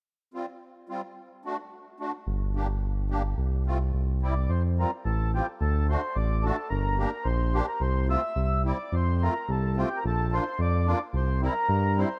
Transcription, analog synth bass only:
\new Staff \with { instrumentName = "Analog synth bass" } { \clef bass \time 2/4 \key f \major \tempo 4 = 108 r2 | r2 | g,,2 | c,4 c,4 |
f,4 a,,4 | d,4 a,,4 | g,,4 bes,,4 | c,4 c,4 |
f,4 c,4 | bes,,4 f,4 | c,4 g,4 | }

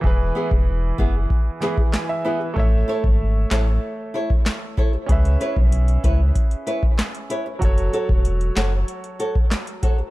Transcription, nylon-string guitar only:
\new Staff \with { instrumentName = "Nylon-string guitar" } { \time 4/4 \key fis \minor \tempo 4 = 95 r8 <b e' gis'>16 r8. <b e' gis'>16 r8. <b e' gis'>16 r8. <b e' gis'>16 r16 | r8 <e' a' cis''>16 r8. <e' a' cis''>16 r8. <e' a' cis''>16 r8. <e' a' cis''>16 r16 | r8 <e' b' cis''>16 r8. <e' b' cis''>16 r8. <e' b' cis''>16 r8. <e' b' cis''>16 r16 | r8 <fis' a' cis''>16 r8. <fis' a' cis''>16 r8. <fis' a' cis''>16 r8. <fis' a' cis''>16 r16 | }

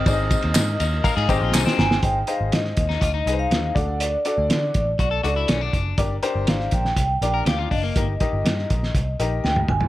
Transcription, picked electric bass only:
\new Staff \with { instrumentName = "Picked electric bass" } { \clef bass \time 4/4 \key aes \lydian \tempo 4 = 122 aes,,8. ees,16 aes,8 ees,8 r16 aes,16 aes,,16 bes,,16 c,16 r16 g,,8 | aes,,8 r16 aes,,16 aes,8 ees,8 d,8 c,8 ees,8 d,8~ | d,8 r16 d,16 d8 a,,8 ces,8 des,8 ces,8 fis,,8 | g,,8 r16 g,,16 aes,,8 bes,,8 c,8 bes,,8 d,8 ges,,8 |
g,,8 r16 g,,16 g,8 bes,,8 c,8 bes,,8 d,8 g,,8 | }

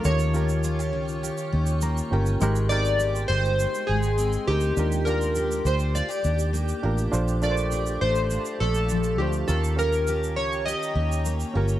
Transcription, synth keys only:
\new Staff \with { instrumentName = "Synth keys" } { \time 4/4 \key ees \lydian \tempo 4 = 102 des''2. r4 | r8 d''4 c''4 aes'4 g'8~ | g'8 bes'4 c''8 d''4 r4 | r8 d''4 c''4 a'4 g'8 |
a'8 bes'4 des''8 ees''4 r4 | }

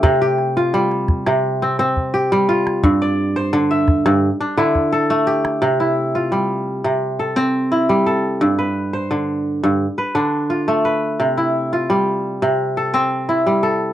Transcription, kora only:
<<
  \new Staff \with { instrumentName = "Kora" } { \time 4/4 \key c \major \tempo 4 = 86 g'16 g'8 f'8. r8. c'8. g'8 f'8~ | f'16 d''8 c''8 e''8. r16 d'16 e'8 a'8 g'8~ | g'16 e'8 f'8. r8. a'16 c'8 e'8 a'8~ | a'16 b'8 c''8. r8. b'16 d'8 f'8 b'8~ |
b'16 e'8 f'8. r8. a'16 c'8 e'8 a'8 | }
  \new Staff \with { instrumentName = "Kora" } { \clef bass \time 4/4 \key c \major c8 r8 g8 r16 c8 r16 c'8 r16 g8 r16 | g,8 r8 d8 r16 g,16 r8 d8 r16 a8 r16 | c8 r8 g8 r16 c8 r16 c'8 r16 g8 r16 | g,8 r8 d8 r16 g,16 r8 d8 r16 a8 r16 |
c8 r8 g8 r16 c8 r16 c'8 r16 g8 r16 | }
>>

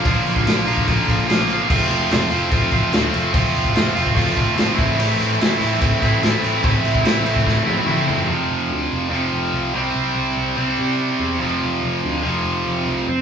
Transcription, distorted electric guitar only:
\new Staff \with { instrumentName = "Distorted electric guitar" } { \time 4/4 \key f \major \tempo 4 = 146 <bes, d f bes f'>4 <d f bes f'>8 <f bes f'>8 <bes, d f bes f'>8 <f bes f'>8 <d f bes f'>4 | <f a c' f'>4 <f a c' f'>8 <a c' f'>8 <f a c' f'>8 <a c' f'>8 <f a c' f'>4 | <f a c' f'>4 <f a c' f'>8 <a c' f'>8 <f a c' f'>8 <a c' f'>8 <f a c' f'>8 <a, e a c' e'>8 | <a, e a c' e'>4 <e a c' e'>8 <a c' e'>8 <a, e a c' e'>8 <a c' e'>8 <e a c' e'>4 |
<a, e a c' e'>4 <e a c' e'>8 <a c' e'>8 <a, e a c' e'>8 <a c' e'>8 <e a c' e'>4 | <f, c f>2 <f, c f>4. <c g c'>8~ | <c g c'>4. <c g c'>2 <f, c f>8~ | <f, c f>4. <f, c f>2 r8 | }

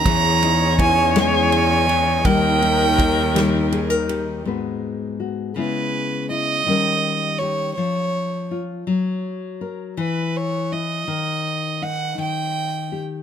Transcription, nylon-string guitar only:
\new Staff \with { instrumentName = "Nylon-string guitar" } { \time 6/8 \key dis \phrygian \tempo 4. = 54 << { gis'8 dis'8 e'2 | <g dis' g' ais'>8 dis'8 g'4 gis'16 ais'16 g'8 | \key gis \minor <gis b fis' b'>4 fis'8 <gis b e'>4 e'8 | <g cis' g' ais'>4 g'8 r4 eis'8 |
r4 ais'8 r4 e'8 | r4 dis'4. g'8 | } \\ { e4. gis8 r8 e8 | dis4. g4. | gis,4. cis4. | dis4. eis4. |
fis4. e4. | dis4. dis4. | } >> }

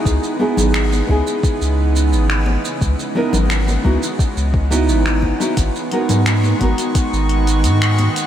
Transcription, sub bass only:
\new Staff \with { instrumentName = "Sub bass" } { \clef bass \time 4/4 \key gis \minor \tempo 4 = 87 cis,16 r8 gis,,8. cis,16 r8 cis,8. gis,,8. r16 | cis,16 r8 gis,,8. cis,16 r8 cis,8. gis,,8. r16 | gis,,16 r8 gis,8. gis,,16 r8 gis,,8. gis,8. r16 | }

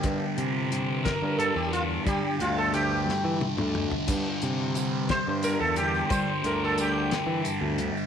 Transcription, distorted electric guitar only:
\new Staff \with { instrumentName = "Distorted electric guitar" } { \clef bass \time 6/8 \key c \mixolydian \tempo 4. = 59 <g, d g>8 <d g>8 <g, d g>8 <d g>8 <g, d g>8 <d g>8 | <g, d g>8 <d g>8 <g, d g>8 <d g>8 <g, d g>8 <d g>8 | <g, d g>8 <d g>8 <g, d g>8 <d g>8 <g, d g>8 <d g>8 | <g, d g>8 <d g>8 <g, d g>8 <d g>8 <g, d g>8 <d g>8 | }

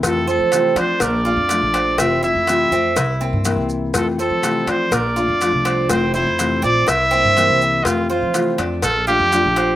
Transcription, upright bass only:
\new Staff \with { instrumentName = "Upright bass" } { \clef bass \time 4/4 \key f \major \tempo 4 = 123 f,8. f8. f8 bes,,8. f,8 bes,,8. | f,,8. f,8. f,8 c,8. g,8 c,8. | f,8. f8. f8 bes,,8. f,8 c,8. | f,,8. f,8. bes,,8 c,8. g,8 c,8. |
f,8. f8. f,8 bes,,8. f,8 bes,,8. | }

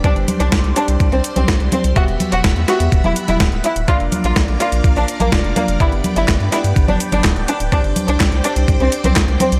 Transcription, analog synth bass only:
\new Staff \with { instrumentName = "Analog synth bass" } { \clef bass \time 4/4 \key c \lydian \tempo 4 = 125 c,16 g,,16 r16 c,16 c,16 c,16 r16 c,16 c,16 c,16 r16 c,16 c,16 c,16 r16 c,16 | e,,16 e,,16 r16 e,,16 e,,16 e,16 r16 e,16 e,,16 e,,16 r16 e,,16 d,,16 d,,16 r16 d,,16 | bes,,16 f,,16 r16 bes,,16 bes,,16 bes,,16 r16 bes,,16 bes,,16 bes,,16 r16 bes,,16 f,,16 f,,16 r16 f,,16 | g,,16 g,,16 r16 g,,16 g,,16 g,16 r16 g,16 g,,16 g,,16 r16 g,,16 d,,16 d,,16 r16 d,,16 |
c,16 g,,16 r16 c,16 c,16 c,16 r16 c,16 c,16 c,16 r16 c,16 c,16 c,16 r16 c,16 | }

